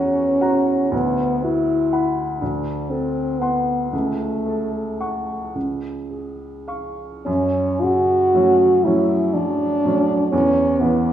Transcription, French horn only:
Already playing: C#4
0.93 B3
1.43 E4
2.40 D4
2.90 C4
3.39 B3
3.92 A3
7.25 C#4
7.82 F#4
8.84 E4
9.34 D4
10.32 C#4
10.80 B3

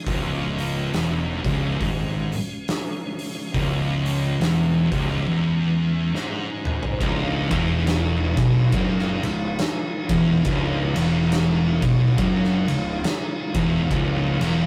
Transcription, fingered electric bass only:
0.07 C#1
0.93 E1
1.44 C#1
1.81 G#1
3.55 C#1
4.40 E1
4.92 C#1
7.01 C#1
7.51 E1
8.37 B1
8.73 F#1
9.23 C#1
10.10 E1
10.45 C#1
10.96 E1
11.82 B1
12.18 F#1
12.68 C#1
13.55 E1
13.91 C#1
14.40 E1

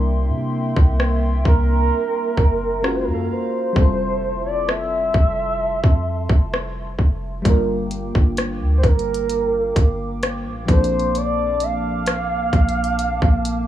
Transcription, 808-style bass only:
Already playing: C2
0.30 C3
0.77 C2
1.45 C2
2.38 F#1
3.07 F#2
3.76 F1
5.14 F1
5.84 F2
6.30 F1
6.99 F1
7.45 G1
8.15 G1
8.61 D2
8.84 G1
9.76 G1
10.45 A1
10.69 A#1
12.53 A#1
13.22 A#1

